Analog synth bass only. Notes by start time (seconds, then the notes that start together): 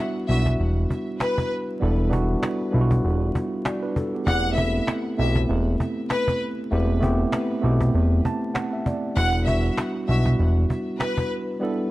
0.29 B1
0.60 E1
1.82 E1
2.74 B1
3.05 E1
4.27 E1
5.19 B1
5.49 E1
6.72 E1
7.64 B1
7.94 E1
9.17 E1
10.09 B1
10.39 E1